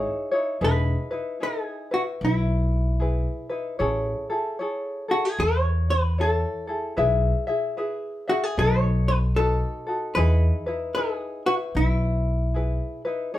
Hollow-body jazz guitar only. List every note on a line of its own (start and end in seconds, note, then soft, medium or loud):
0.64 1.45 B4 medium
1.43 1.93 G#4 medium
1.94 2.01 F#4 medium
2.25 3.48 E4 medium
5.11 5.25 F#4 medium
5.25 5.40 G#4 medium
5.40 5.90 C#5 medium
5.90 6.20 B4 medium
6.21 6.81 A4 medium
8.29 8.43 F#4 medium
8.43 8.59 G#4 medium
8.59 9.08 C#5 medium
9.08 9.16 B4 medium
9.36 9.98 A4 medium
10.15 10.98 B4 medium
10.95 11.42 G#4 medium
11.46 11.54 F#4 medium
11.77 13.01 E4 medium